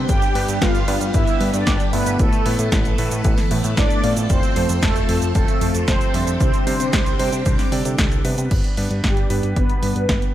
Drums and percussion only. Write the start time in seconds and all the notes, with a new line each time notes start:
0.09 kick, closed hi-hat, cabasa
0.22 closed hi-hat, cabasa
0.35 open hi-hat
0.49 closed hi-hat, cabasa
0.62 kick, snare, closed hi-hat, cabasa
0.75 closed hi-hat, cabasa
0.88 open hi-hat
1.01 closed hi-hat, cabasa
1.14 kick, closed hi-hat, cabasa
1.27 closed hi-hat, cabasa
1.41 open hi-hat
1.54 closed hi-hat, cabasa
1.67 kick, snare, closed hi-hat, cabasa
1.80 closed hi-hat, cabasa
1.93 open hi-hat
2.06 closed hi-hat, cabasa
2.19 kick, closed hi-hat, cabasa
2.33 closed hi-hat, cabasa
2.46 open hi-hat
2.59 closed hi-hat, cabasa
2.72 kick, snare, closed hi-hat, cabasa
2.85 closed hi-hat, cabasa
2.98 open hi-hat
3.11 closed hi-hat, cabasa
3.25 kick, closed hi-hat, cabasa
3.38 snare, open hi-hat, cabasa
3.51 open hi-hat
3.64 closed hi-hat, cabasa
3.77 kick, snare, closed hi-hat, cabasa
3.90 closed hi-hat, cabasa
4.04 open hi-hat
4.17 closed hi-hat, cabasa
4.30 kick, closed hi-hat, cabasa
4.43 closed hi-hat, cabasa
4.56 open hi-hat
4.69 closed hi-hat, cabasa
4.83 kick, snare, closed hi-hat, cabasa
4.96 closed hi-hat, cabasa
5.09 open hi-hat
5.22 closed hi-hat, cabasa
5.35 kick, closed hi-hat, cabasa
5.48 closed hi-hat, cabasa
5.61 open hi-hat
5.75 closed hi-hat, cabasa
5.88 kick, snare, closed hi-hat, cabasa
6.01 closed hi-hat, cabasa
6.14 open hi-hat
6.27 closed hi-hat, cabasa
6.41 kick, closed hi-hat, cabasa
6.54 closed hi-hat, cabasa
6.67 open hi-hat
6.80 closed hi-hat, cabasa
6.93 kick, snare, closed hi-hat, cabasa
7.06 closed hi-hat, cabasa
7.20 open hi-hat
7.33 closed hi-hat, cabasa
7.46 kick, closed hi-hat, cabasa
7.59 snare, open hi-hat, cabasa
7.72 open hi-hat
7.85 closed hi-hat, cabasa
7.98 kick, snare, closed hi-hat, cabasa
8.12 closed hi-hat, cabasa
8.25 open hi-hat
8.38 closed hi-hat, cabasa
8.51 kick, closed hi-hat, crash
8.64 closed hi-hat
8.77 open hi-hat
8.91 closed hi-hat
9.04 kick, snare, closed hi-hat
9.17 closed hi-hat
9.30 open hi-hat
9.43 closed hi-hat
9.56 kick, closed hi-hat
9.70 closed hi-hat
9.83 open hi-hat
9.96 closed hi-hat
10.09 kick, snare, closed hi-hat
10.22 closed hi-hat